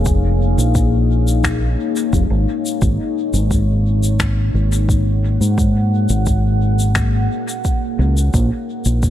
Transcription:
Already playing: fingered electric bass F1, ambient pad A#3 D#4 G#4 C#5 F5
0.05 kick, shaker
0.58 fingered electric bass A#1, shaker
0.75 kick, shaker
1.28 shaker
1.44 finger snap, kick, shaker
1.96 shaker
2.13 fingered electric bass F1, kick, shaker
2.30 fingered electric bass G#1
2.66 shaker
2.82 fingered electric bass G#1, kick, shaker
3.33 fingered electric bass G#1, shaker
3.51 kick, shaker
4.03 shaker
4.20 finger snap, kick, shaker
4.43 ambient pad F#5
4.54 fingered electric bass G#1
4.72 shaker
4.89 kick, shaker
5.41 fingered electric bass G#2, shaker
5.58 kick, shaker
6.09 fingered electric bass G#1, shaker
6.26 kick, shaker
6.79 shaker
6.95 finger snap, kick, shaker
7.49 shaker
7.65 kick, shaker
7.99 fingered electric bass C#2
8.17 shaker
8.34 fingered electric bass A#1, ambient pad G#3, kick, shaker
8.85 fingered electric bass A#1, shaker
9.03 kick, shaker

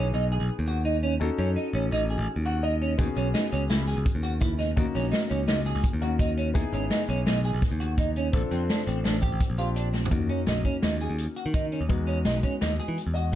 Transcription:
Already playing: picked electric bass B1, grand piano B3 D#4 E4 G#4
0.14 picked electric bass B1, clean electric guitar D#4
0.32 clean electric guitar G#4
0.40 picked electric bass B1
0.59 picked electric bass D#2
0.68 clean electric guitar F#4
0.85 clean electric guitar D#4
1.03 clean electric guitar C#4
1.20 picked electric bass D#2, grand piano C#4 D#4 F#4 A4
1.38 picked electric bass F#2, clean electric guitar C#4
1.56 clean electric guitar D#4
1.73 picked electric bass A1, clean electric guitar C#4
1.91 picked electric bass A1, clean electric guitar D#4
2.10 clean electric guitar G#4
2.18 picked electric bass A1
2.36 picked electric bass D#2
2.46 clean electric guitar F#4, grand piano F#5
2.63 clean electric guitar D#4, grand piano D#5
2.82 clean electric guitar C#4
2.98 picked electric bass D#2, grand piano B3 C#4 F#4 G#4, kick, closed hi-hat
3.16 picked electric bass B1, clean electric guitar C#4, closed hi-hat
3.34 clean electric guitar D#4, snare, closed hi-hat
3.52 picked electric bass C#2, clean electric guitar C#4, closed hi-hat
3.70 picked electric bass C#2, clean electric guitar E4, snare, closed hi-hat
3.88 clean electric guitar G#4, snare, closed hi-hat
3.97 picked electric bass C#2
4.06 kick, closed hi-hat
4.15 picked electric bass D#2
4.23 clean electric guitar F#4, closed hi-hat
4.41 clean electric guitar E4, kick, closed hi-hat
4.59 clean electric guitar D#4, snare, closed hi-hat
4.76 picked electric bass D#2, grand piano A#3 C#4 D#4 F#4, kick, closed hi-hat
4.95 picked electric bass A#1, clean electric guitar C#4, snare, closed hi-hat
5.12 clean electric guitar D#4, snare, closed hi-hat
5.30 picked electric bass C#2, clean electric guitar C#4, closed hi-hat
5.48 picked electric bass C#2, clean electric guitar D#4, snare, closed hi-hat
5.66 clean electric guitar G#4, closed hi-hat
5.75 picked electric bass C#2
5.84 kick, closed hi-hat
5.93 picked electric bass D#2
6.02 grand piano A#3 C#4 D#4 F#4, clean electric guitar F#4, closed hi-hat
6.19 clean electric guitar D#4, kick, closed hi-hat
6.37 clean electric guitar C#4, closed hi-hat
6.54 picked electric bass D#2, grand piano B3 D#4 E4 G#4, kick, closed hi-hat
6.73 picked electric bass G#1, clean electric guitar C#4, closed hi-hat
6.90 clean electric guitar D#4, snare, closed hi-hat
7.09 picked electric bass B1, clean electric guitar C#4, closed hi-hat
7.26 picked electric bass B1, clean electric guitar D#4, snare, closed hi-hat
7.45 clean electric guitar G#4, closed hi-hat
7.53 picked electric bass B1
7.62 kick, snare, closed hi-hat
7.71 picked electric bass D#2
7.80 clean electric guitar F#4, closed hi-hat
7.98 clean electric guitar D#4, kick, closed hi-hat
8.16 clean electric guitar C#4, closed hi-hat
8.32 picked electric bass A#1, grand piano C4 D4 F4 A4, kick, closed hi-hat
8.51 picked electric bass F2, clean electric guitar C4, closed hi-hat
8.69 clean electric guitar D4, snare, closed hi-hat
8.87 picked electric bass A1, clean electric guitar C4, closed hi-hat
9.04 picked electric bass A1, clean electric guitar D4, snare, closed hi-hat
9.22 clean electric guitar G4, kick, closed hi-hat
9.32 picked electric bass A1
9.40 kick, closed hi-hat
9.50 picked electric bass A#1
9.58 grand piano C4 D4 F4 G4, clean electric guitar F4, closed hi-hat
9.76 clean electric guitar D4, closed hi-hat
9.93 clean electric guitar C4, snare
10.05 floor tom
10.11 picked electric bass D#2, grand piano A#3 C#4 D#4 F#4, kick, closed hi-hat
10.29 clean electric guitar C#4, closed hi-hat
10.47 picked electric bass A#1, clean electric guitar D#4, snare, closed hi-hat
10.65 clean electric guitar C#4, kick, closed hi-hat
10.82 picked electric bass D#2, clean electric guitar D#4, snare, closed hi-hat
11.00 clean electric guitar G#4, closed hi-hat
11.10 picked electric bass D#2
11.18 closed hi-hat
11.36 clean electric guitar F#4, closed hi-hat
11.46 picked electric bass D#3
11.54 clean electric guitar D#4, kick, closed hi-hat
11.72 clean electric guitar C#4, closed hi-hat
11.81 picked electric bass D#2
11.89 picked electric bass E2, grand piano G#3 B3 D#4 F#4, kick, closed hi-hat
12.07 clean electric guitar C#4, closed hi-hat
12.25 picked electric bass B1, clean electric guitar D#4, snare, closed hi-hat
12.43 clean electric guitar C#4, kick, closed hi-hat
12.61 picked electric bass D#2, clean electric guitar D#4, snare, closed hi-hat
12.79 clean electric guitar G#4, closed hi-hat
12.88 picked electric bass E3
12.98 closed hi-hat
13.07 picked electric bass E2
13.14 clean electric guitar F#4, grand piano D#5, closed hi-hat

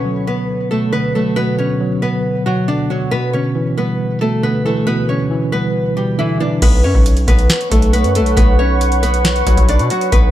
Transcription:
Already playing: tine electric piano B2 D3, nylon-string guitar C#4 C#5
0.05 tine electric piano F#3
0.27 tine electric piano B3, nylon-string guitar B3 B4
0.71 tine electric piano B2, nylon-string guitar A3 A4
0.93 tine electric piano D3, nylon-string guitar B3 B4
1.15 tine electric piano F#3, nylon-string guitar A3 A4
1.36 tine electric piano B2, nylon-string guitar B3 B4
1.58 tine electric piano D3, nylon-string guitar C#4 C#5
1.80 tine electric piano F#3
2.02 tine electric piano B3, nylon-string guitar B3 B4
2.46 tine electric piano B2, nylon-string guitar F#3 F#4
2.68 tine electric piano D3, nylon-string guitar D4 D5
2.90 tine electric piano F#3, nylon-string guitar F#3 F#4
3.11 tine electric piano B2, nylon-string guitar B3 B4
3.33 tine electric piano D3, nylon-string guitar C#4 C#5
3.55 tine electric piano E3
3.77 tine electric piano G3, nylon-string guitar B3 B4
4.21 tine electric piano B2, nylon-string guitar A3 A4
4.43 tine electric piano D3, nylon-string guitar B3 B4
4.65 tine electric piano E3, nylon-string guitar A3 A4
4.87 tine electric piano B2, nylon-string guitar B3 B4
5.09 tine electric piano D3, nylon-string guitar C#4 C#5
5.31 tine electric piano E3
5.52 tine electric piano G3, nylon-string guitar B3 B4
5.97 tine electric piano B2, nylon-string guitar G3 G4
6.18 tine electric piano D3, nylon-string guitar E3 E4
6.40 tine electric piano E3, nylon-string guitar D4 D5
6.62 808-style bass B1, nylon-string guitar B3 B4, ambient pad B4 C#5 F#5 C#6, kick, closed hi-hat, crash
6.84 808-style bass F#2, nylon-string guitar C#4 C#5
6.95 808-style bass B1, kick
7.06 closed hi-hat
7.17 closed hi-hat
7.28 808-style bass B1, nylon-string guitar B3 B4, kick, closed hi-hat
7.39 closed hi-hat
7.50 snare, closed hi-hat
7.61 closed hi-hat
7.71 808-style bass B1, nylon-string guitar A3 A4, kick, closed hi-hat
7.82 closed hi-hat
7.93 nylon-string guitar B3 B4, closed hi-hat
8.04 808-style bass F#2, closed hi-hat
8.15 nylon-string guitar A3 A4, closed hi-hat
8.21 808-style bass B1
8.26 closed hi-hat
8.37 808-style bass B1, nylon-string guitar B3 B4, kick, closed hi-hat
8.59 nylon-string guitar C#4 C#5
8.81 closed hi-hat
8.92 closed hi-hat
9.03 nylon-string guitar B3 B4, closed hi-hat
9.14 closed hi-hat
9.25 snare, closed hi-hat
9.36 closed hi-hat
9.46 808-style bass B1, nylon-string guitar F#3 F#4, kick, closed hi-hat
9.57 808-style bass B1, kick, closed hi-hat
9.69 nylon-string guitar D4 D5, closed hi-hat
9.79 808-style bass B2, closed hi-hat
9.90 nylon-string guitar F#3 F#4, closed hi-hat
10.01 closed hi-hat
10.12 808-style bass B1, nylon-string guitar B3 B4, ambient pad B4 E5 G5, kick, closed hi-hat

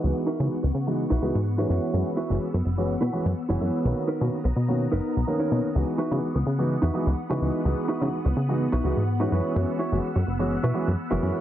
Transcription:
Already playing: string machine B3 F#5
0.03 analog synth bass C#2, grand piano E3 G#3 B3 D#4 F#4, string machine C#6
0.27 clean electric guitar D#4 E4 F#4 A#4
0.39 analog synth bass C#3, grand piano E3 G#3 B3 D#4 F#4
0.63 analog synth bass C#2, muted clean electric guitar stroke
0.74 analog synth bass C#3, muted clean electric guitar stroke
0.87 grand piano E3 G#3 B3 D#4 F#4
1.10 analog synth bass B1, clean electric guitar D#4 E4 F#4 B4
1.22 analog synth bass C#2, grand piano E3 G#3 B3 D#4 F#4
1.35 analog synth bass G#2
1.58 grand piano E3 G#3 B3 C#4 F#4, clean electric guitar D#4 E4 F#4 B4
1.69 analog synth bass F#2, clean electric guitar E4 F#4 B4, string machine F#5 E6
1.93 analog synth bass F#2, grand piano E3 G#3 B3 C#4 F#4
2.17 clean electric guitar E4 F#4 B4
2.30 analog synth bass F#1, grand piano E3 G#3 B3 C#4 F#4
2.53 analog synth bass F#2, muted clean electric guitar stroke
2.64 analog synth bass F#1, muted clean electric guitar stroke
2.77 grand piano E3 G#3 B3 C#4 F#4
3.01 analog synth bass B2, clean electric guitar E4 F#4 B4
3.13 grand piano E3 G#3 B3 C#4 F#4
3.25 analog synth bass F#2
3.49 analog synth bass F#1, grand piano E3 G#3 B3 C#4 F#4, clean electric guitar E4 F#4 C#5
3.61 analog synth bass F#2
3.84 analog synth bass B1, grand piano D#3 A#3 B3 C#4 F#4, string machine A#5 D#6
4.08 clean electric guitar D#4 A#4 B4
4.20 analog synth bass B2, grand piano D#3 A#3 B3 C#4 F#4
4.44 analog synth bass B1, muted clean electric guitar stroke
4.55 analog synth bass B2, muted clean electric guitar stroke
4.68 grand piano D#3 A#3 B3 C#4 F#4
4.92 analog synth bass F#1, clean electric guitar D#4 A#4 B4
5.16 analog synth bass B1
5.27 grand piano D#3 A#3 B3 C#4 A#4
5.39 clean electric guitar D#4 A#4 C#5
5.51 analog synth bass B2, grand piano D#3 A#3 B3 C#4 A#4
5.75 analog synth bass C#2, grand piano E3 G#3 B3 D#4 F#4, string machine B3 F#5
5.98 clean electric guitar D#4 E4 F#4 B4
6.11 analog synth bass C#3, grand piano E3 G#3 B3 D#4 F#4
6.34 analog synth bass C#2, muted clean electric guitar stroke
6.46 analog synth bass C#3, muted clean electric guitar stroke
6.58 grand piano E3 G#3 B3 D#4 F#4
6.82 analog synth bass E2, clean electric guitar D#4 E4 F#4 B4
6.94 grand piano E3 G#3 B3 D#4 F#4
7.06 analog synth bass C#2
7.30 analog synth bass C#3, grand piano E3 G#3 B3 F#4 D#5, clean electric guitar D#4 E4 F#4 B4
7.42 analog synth bass C#2
7.65 analog synth bass C#2, grand piano E3 G#3 B3 D#4 F#4
7.88 clean electric guitar D#4 E4 F#4 B4
8.01 analog synth bass C#3, grand piano E3 G#3 B3 D#4 F#4
8.25 analog synth bass C#2, muted clean electric guitar stroke
8.36 analog synth bass C#3, muted clean electric guitar stroke
8.49 grand piano E3 G#3 B3 D#4 F#4
8.72 analog synth bass B1, clean electric guitar D#4 E4 F#4 B4
8.84 analog synth bass C#2, grand piano E3 G#3 B3 D#4 F#4
8.97 analog synth bass G#2
9.20 grand piano E3 G#3 B3 C#4 F#4, clean electric guitar D#4 E4 F#4 B4
9.31 analog synth bass F#2, clean electric guitar E4 F#4 B4, string machine E6
9.55 analog synth bass F#2, grand piano E3 G#3 B3 C#4 F#4
9.79 clean electric guitar E4 F#4 C#5
9.92 analog synth bass F#1, grand piano E3 G#3 B3 C#4 F#4
10.16 analog synth bass F#2, muted clean electric guitar stroke
10.27 analog synth bass F#1, muted clean electric guitar stroke
10.39 grand piano E3 G#3 B3 C#4 F#4
10.63 analog synth bass B2, clean electric guitar E4 F#4 B4
10.74 grand piano E3 G#3 B3 C#4 F#4
10.87 analog synth bass F#2
11.10 analog synth bass F#1, grand piano E3 G#3 B3 C#4 F#4, clean electric guitar E4 F#4 A#4
11.23 analog synth bass F#2

